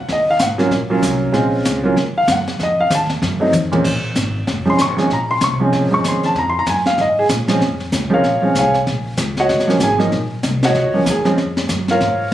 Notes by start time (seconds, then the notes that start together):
0.08 D#2, brush sweep, kick, snare
0.12 D#5
0.30 F5
0.39 G#1 F#5, kick, snare, hi-hat pedal
0.58 F#3 A#3 C#4 F4, snare
0.71 A#1, brush sweep, kick, snare
0.90 F#3 A#3 C#4 F4
1.02 C2, kick, snare, hi-hat pedal
1.32 A#1 G#3 C4 C#4 F4, brush sweep, kick, snare
1.65 C#2, kick, snare, hi-hat pedal
1.84 F#3 A#3 C#4 F4
1.96 D#2, brush sweep, kick, snare
2.18 F5
2.28 F#2, kick, snare, hi-hat pedal
2.32 F#5
2.47 muted upright bass stroke, snare
2.59 F2, brush sweep, kick, snare
2.63 D#5
2.80 F5
2.90 D#2, kick, snare, hi-hat pedal
2.95 A5
3.09 snare
3.22 F#2, brush sweep, kick, snare
3.40 F#3 A3 C4 D#4
3.53 F2, hi-hat pedal, mid tom
3.72 A#2 F3 G#3 C4 C#4, mid tom
3.84 A#1, brush sweep, kick, snare, crash
4.15 G#1, kick, snare, hi-hat pedal
4.47 F1, brush sweep, kick, snare
4.65 F3 G#3 C4 C#4
4.70 C6
4.77 G#1 C6, kick, snare, hi-hat pedal
4.82 C#6
4.97 F3 G#3 C4 C#4, snare
5.10 A#1 A#5, brush sweep, kick, snare
5.31 C6
5.41 C2 C#6, kick, snare, hi-hat pedal
5.60 F3 G#3 C4 C#4
5.72 C#2, brush sweep, kick, snare
5.83 A#1
5.91 G#1 F3 G#3 C4 C#4 C#6
6.04 D#2, kick, snare, hi-hat pedal
6.08 C6
6.23 A5, snare
6.35 F2 A#5, brush sweep, kick, snare
6.50 C6
6.59 A#5
6.66 F#2 G#5, kick, snare, hi-hat pedal
6.86 F5, snare
6.98 G#2 D#5, brush sweep, kick, snare
7.19 G#4
7.29 A#2, kick, snare, hi-hat pedal
7.48 F3 G#3 C4 C#4, snare
7.60 F2, brush sweep, kick, snare
7.80 snare
7.92 C#2, kick, snare, hi-hat pedal
8.10 F3 G#3 C4 C#4 F4 A#4 F5
8.14 C#5
8.24 A#1, brush sweep, kick, snare
8.42 F3 G#3 C4 C#4
8.55 C2 C#5 F5 G#5, kick, snare, hi-hat pedal
8.59 G#4
8.74 snare
8.86 A#1, brush sweep, kick, snare
9.17 C#2, kick, snare, hi-hat pedal
9.37 F#4 C#5 D#5 F#5, snare
9.49 F#1, brush sweep, kick, snare
9.60 snare
9.68 F3 F#3 A#3 C#4, snare
9.80 G#1 G#5, kick, snare, hi-hat pedal
9.84 G#4
9.98 F3 F#3 A#3 D#4, snare
10.12 A#1, brush sweep, kick, snare
10.43 C2, kick, snare, hi-hat pedal
10.63 F#4 C#5 D#5 F#5, snare
10.74 C#2, brush sweep, kick, snare
10.94 F3 F#3 A#3 C#4
11.06 D#2, kick, snare, hi-hat pedal
11.10 G#4 G#5
11.25 F3 G#3 C4 C#4, snare
11.37 F2, brush sweep, kick, snare
11.57 snare
11.69 F#2, kick, snare, hi-hat pedal
11.88 F4 A#4 C#5 F5, snare
12.01 G#2, brush sweep, kick, snare